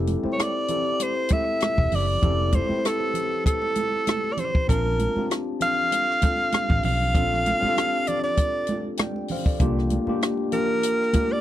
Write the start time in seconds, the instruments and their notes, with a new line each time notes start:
Already playing: fingered electric bass F1, tine electric piano C4 E4 G4 A4
0.07 closed hi-hat, high conga
0.23 tine electric piano C4 E4 G4 C5, muted fingered electric bass stroke, high conga
0.33 alto saxophone C#5
0.39 alto saxophone D5, cross-stick, closed hi-hat, muted conga
0.68 tine electric piano C4 E4 G4 A4, closed hi-hat, low conga
1.00 alto saxophone C5, closed hi-hat, muted conga
1.29 tine electric piano C4 E4 G4 A4, kick, closed hi-hat, high conga
1.33 alto saxophone E5
1.60 cross-stick, closed hi-hat, high conga
1.78 fingered electric bass E1, kick
1.92 fingered electric bass F#1, alto saxophone D5, open hi-hat, low conga
2.22 fingered electric bass F1, tine electric piano C4 E4 G4 A4, kick, closed hi-hat, low conga
2.39 muted conga
2.52 alto saxophone C5, kick, closed hi-hat, high conga
2.69 tine electric piano C4 E4 G4 B4, muted fingered electric bass stroke, high conga
2.78 tine electric piano C5
2.85 alto saxophone A4, cross-stick, closed hi-hat
3.01 muted conga
3.14 closed hi-hat, low conga
3.44 alto saxophone A4, kick, closed hi-hat, muted conga
3.62 muted conga
3.75 closed hi-hat, high conga
4.07 cross-stick, closed hi-hat, muted conga, high conga
4.24 muted conga
4.33 alto saxophone D5
4.37 alto saxophone C5, closed hi-hat, low conga
4.55 kick
4.68 fingered electric bass A#1, tine electric piano C4 D4 F4 A5, alto saxophone A#4, kick, closed hi-hat, low conga
4.85 muted conga
4.99 closed hi-hat, high conga
5.16 tine electric piano C4 D4 F4 G4, muted fingered electric bass stroke, high conga
5.30 cross-stick, closed hi-hat, muted conga
5.60 tine electric piano C4 D4 F4 A4, alto saxophone F5, closed hi-hat, low conga
5.92 closed hi-hat, muted conga
6.11 cross-stick
6.22 tine electric piano C4 D4 F4 A4, kick, closed hi-hat, high conga
6.52 cross-stick, closed hi-hat, high conga
6.70 fingered electric bass A1, kick
6.83 fingered electric bass B1, alto saxophone F5, open hi-hat, low conga
7.14 fingered electric bass A#1, tine electric piano C4 D4 F4 A4, kick, closed hi-hat, muted conga, low conga
7.32 cross-stick, muted conga
7.46 closed hi-hat, high conga
7.60 tine electric piano C4 D4 F4 G4, muted fingered electric bass stroke, high conga
7.69 tine electric piano A4
7.78 cross-stick, closed hi-hat, muted conga
8.07 alto saxophone D5, closed hi-hat, low conga
8.24 alto saxophone D5
8.37 kick, closed hi-hat, muted conga
8.67 closed hi-hat, high conga
8.97 tine electric piano D5 G5, cross-stick, closed hi-hat, muted conga, high conga
9.16 muted conga
9.28 tine electric piano C5 F5, open hi-hat, low conga
9.46 tine electric piano A4 D5, kick
9.59 fingered electric bass C2, tine electric piano A#3 D4 F4 G4, kick, closed hi-hat, muted conga, low conga
9.79 cross-stick
9.90 closed hi-hat, high conga
10.07 tine electric piano A#3 D4 F4 G4, muted fingered electric bass stroke, high conga
10.21 cross-stick, closed hi-hat, muted conga
10.37 muted conga
10.52 tine electric piano A#3 D4 F4 G4, alto saxophone A#4, closed hi-hat, low conga
10.83 closed hi-hat
11.02 cross-stick
11.13 tine electric piano A#3 D4 F4 G4, kick, closed hi-hat, high conga
11.32 alto saxophone D5